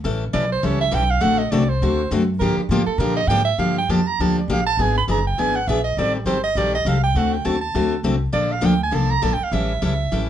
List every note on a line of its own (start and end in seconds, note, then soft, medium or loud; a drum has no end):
0.04 0.33 A1 loud
0.04 0.23 E3 medium
0.04 0.23 G3 medium
0.04 0.23 C#4 medium
0.04 0.24 E4 medium
0.04 0.23 A4 medium
0.33 0.62 B1 medium
0.33 0.44 E3 medium
0.33 0.44 G3 medium
0.33 0.44 C#4 medium
0.33 0.44 E4 medium
0.33 0.44 A4 medium
0.33 0.50 D5 medium
0.52 0.67 C5 medium
0.63 0.92 C#2 medium
0.63 0.82 E3 medium
0.63 0.82 G3 medium
0.63 0.82 C#4 medium
0.63 0.82 E4 medium
0.63 0.83 A4 medium
0.63 0.80 C#5 medium
0.81 0.96 E5 loud
0.91 1.21 B1 medium
0.91 1.02 E3 medium
0.91 1.03 G3 medium
0.91 1.03 C#4 medium
0.91 1.03 E4 medium
0.91 1.03 A4 medium
0.91 1.12 G5 loud
1.11 1.23 F5 loud
1.21 1.51 A1 medium
1.21 1.40 D3 medium
1.21 1.41 A3 medium
1.21 1.41 C4 medium
1.21 1.41 F#4 medium
1.21 1.41 A4 medium
1.21 1.40 F#5 loud
1.39 1.52 D#5 medium
1.51 1.80 C2 medium
1.51 1.62 D3 medium
1.51 1.62 A3 loud
1.51 1.63 C4 medium
1.51 1.63 F#4 medium
1.51 1.63 A4 loud
1.51 1.71 D5 medium
1.69 2.11 C5 medium
1.82 2.10 D2 medium
1.82 2.01 D3 medium
1.82 2.01 A3 medium
1.82 2.01 C4 medium
1.82 2.01 F#4 medium
1.82 2.01 A4 medium
2.11 2.40 F#2 loud
2.11 2.22 D3 loud
2.11 2.22 A3 medium
2.11 2.22 C4 medium
2.11 2.22 F#4 medium
2.11 2.23 A4 medium
2.39 2.56 G2 loud
2.39 2.60 D3 medium
2.39 2.60 F3 medium
2.39 2.60 A#3 medium
2.39 2.60 D4 medium
2.39 2.60 G4 medium
2.39 2.56 A#4 medium
2.57 2.72 D4 soft
2.57 muted upright bass stroke soft
2.69 2.86 A2 medium
2.69 2.81 D3 medium
2.69 2.81 F3 medium
2.69 2.81 A#3 medium
2.69 2.82 D4 loud
2.69 2.86 F4 medium
2.69 2.82 G4 medium
2.86 3.00 A4 medium
2.86 muted upright bass stroke soft
2.98 3.27 A#2 loud
2.98 3.19 D3 medium
2.98 3.19 F3 medium
2.98 3.19 A#3 medium
2.98 3.19 D4 medium
2.98 3.20 G4 medium
2.98 3.16 A#4 medium
3.17 3.29 D#5 loud
3.27 3.57 G#2 loud
3.27 3.40 D3 medium
3.27 3.40 F3 medium
3.27 3.40 A#3 medium
3.27 3.41 D4 loud
3.27 3.40 G4 loud
3.27 3.44 G5 loud
3.45 3.61 E5 loud
3.58 3.87 G2 medium
3.58 3.78 D3 medium
3.58 3.78 F3 medium
3.58 3.78 A#3 medium
3.58 3.78 D4 medium
3.58 3.78 G4 medium
3.58 3.76 F5 medium
3.78 3.92 G5 medium
3.88 4.17 F2 medium
3.88 4.00 D3 medium
3.88 4.00 F3 medium
3.88 4.00 A#3 medium
3.88 4.00 D4 medium
3.88 4.00 G4 medium
3.88 4.09 A5 medium
4.07 4.23 A#5 loud
4.19 4.47 D2 medium
4.19 4.38 D3 medium
4.19 4.39 F3 medium
4.19 4.39 A#3 medium
4.19 4.39 D4 medium
4.19 4.39 G4 medium
4.19 4.37 A5 medium
4.39 4.55 D5 medium
4.48 4.77 A#1 medium
4.48 4.59 D3 medium
4.48 4.59 F3 medium
4.48 4.59 A#3 medium
4.48 4.60 D4 medium
4.48 4.60 G4 medium
4.53 4.66 F5 medium
4.67 4.83 A5 loud
4.77 5.06 G#1 medium
4.77 4.97 E3 medium
4.77 4.98 B3 medium
4.77 4.98 D4 medium
4.77 4.98 G#4 medium
4.82 4.97 G#5 medium
4.98 5.04 B5 medium
5.08 5.36 F#1 medium
5.08 5.18 E3 medium
5.08 5.18 B3 medium
5.08 5.19 D4 medium
5.08 5.19 G#4 medium
5.08 5.26 A#5 medium
5.27 5.41 G5 medium
5.38 5.67 G#1 medium
5.38 5.57 E3 medium
5.38 5.57 B3 medium
5.38 5.57 D4 medium
5.38 5.57 G#4 medium
5.38 5.57 G#5 loud
5.56 5.69 F#5 loud
5.67 5.96 A#1 loud
5.67 5.78 E3 medium
5.67 5.78 B3 medium
5.67 5.78 D4 medium
5.67 5.79 G#4 medium
5.67 5.83 E5 medium
5.84 6.00 D#5 medium
5.97 6.24 A1 medium
5.97 6.17 D#3 medium
5.97 6.17 G3 medium
5.97 6.17 C4 medium
5.97 6.17 G4 medium
5.97 6.17 A4 medium
5.97 6.15 D5 medium
6.15 6.27 G4 soft
6.25 6.54 G1 medium
6.25 6.36 D#3 medium
6.25 6.37 G3 medium
6.25 6.37 C4 medium
6.25 6.37 G4 medium
6.25 6.37 A4 medium
6.25 6.43 C5 medium
6.44 6.59 D#5 loud
6.55 6.84 A#1 medium
6.55 6.76 D#3 medium
6.55 6.75 G3 medium
6.55 6.76 C4 medium
6.55 6.76 G4 medium
6.55 6.76 A4 medium
6.55 6.74 D5 medium
6.75 6.90 D#5 medium
6.85 7.14 C2 medium
6.85 6.96 D#3 medium
6.85 6.96 G3 medium
6.85 6.96 C4 medium
6.85 6.97 G4 medium
6.85 6.97 A4 loud
6.85 7.03 F5 medium
7.04 7.19 G5 loud
7.15 7.44 D2 medium
7.15 7.34 D3 medium
7.15 7.35 A3 medium
7.15 7.35 C4 medium
7.15 7.35 F#4 medium
7.15 7.35 A4 medium
7.15 7.35 F#5 loud
7.33 7.47 G5 medium
7.45 7.74 D#2 medium
7.45 7.55 D3 medium
7.45 7.55 A3 medium
7.45 7.55 C4 medium
7.45 7.55 F#4 medium
7.45 7.56 A4 medium
7.45 7.60 A5 medium
7.61 8.01 A5 medium
7.75 8.03 D2 medium
7.75 7.94 D3 medium
7.75 7.94 A3 medium
7.75 7.94 C4 medium
7.75 7.94 F#4 medium
7.75 7.94 A4 medium
8.03 8.32 C2 medium
8.03 8.15 D3 medium
8.03 8.15 A3 medium
8.03 8.15 C4 medium
8.03 8.15 F#4 medium
8.03 8.15 A4 medium
8.32 8.62 A#1 loud
8.32 8.52 D3 medium
8.32 8.52 F3 medium
8.32 8.52 A#3 medium
8.32 8.53 D4 medium
8.32 8.53 A4 medium
8.32 8.53 D5 medium
8.52 8.67 F5 medium
8.61 8.92 D2 medium
8.61 8.73 D3 medium
8.61 8.73 F3 medium
8.61 8.73 A#3 medium
8.61 8.73 D4 loud
8.61 8.73 A4 medium
8.65 8.82 G5 medium
8.84 8.96 G#5 medium
8.91 9.22 C2 medium
8.91 9.11 D3 medium
8.91 9.11 F3 medium
8.91 9.12 A#3 medium
8.91 9.12 D4 medium
8.91 9.12 A4 medium
8.91 9.12 A5 medium
9.11 9.25 A#5 loud
9.22 9.39 A#1 medium
9.22 9.33 D3 medium
9.22 9.33 F3 medium
9.22 9.33 A#3 medium
9.22 9.33 D4 medium
9.22 9.33 A4 medium
9.22 9.35 A5 medium
9.33 9.45 G5 medium
9.41 9.55 F5 medium
9.41 muted upright bass stroke soft
9.52 9.81 A1 medium
9.52 9.72 E3 medium
9.52 9.72 G3 medium
9.52 9.72 C#4 medium
9.52 9.72 E4 medium
9.52 9.72 A4 medium
9.52 10.30 E5 medium
9.82 10.11 C#2 medium
9.82 9.92 E3 medium
9.82 9.92 G3 medium
9.82 9.92 C#4 medium
9.82 9.93 E4 loud
9.82 9.93 A4 loud
10.12 10.30 A1 medium
10.12 10.30 E3 medium
10.12 10.30 G3 medium
10.12 10.30 C#4 medium
10.12 10.30 E4 medium
10.12 10.30 A4 medium